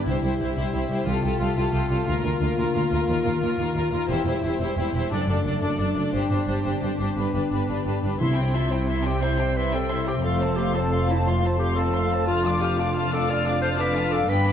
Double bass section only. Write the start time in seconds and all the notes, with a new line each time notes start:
0.06 C2
0.24 C2
0.41 C2
0.57 C2
0.74 C2
0.90 C2
1.06 C2
1.24 C2
1.41 C2
1.58 C2
1.74 C2
1.91 C2
2.08 D2
2.25 D2
2.42 D2
2.58 D2
2.75 D2
2.92 D2
3.09 D#2
3.26 D#2
3.42 D#2
3.59 D#2
3.77 D#2
3.93 D#2
4.10 E1
4.27 E1
4.44 E1
4.60 E1
4.78 E1
4.94 E1
5.11 F#1
5.28 F#1
5.46 F#1
5.62 F#1
5.80 F#1
5.97 F#1
6.14 G1
6.31 G1
6.48 G1
6.65 G1
6.83 G1
7.00 G1
7.17 G1
7.34 G1
7.52 G1
7.70 G1
7.87 G1
8.04 G1
8.22 C2
10.24 F1
14.30 G1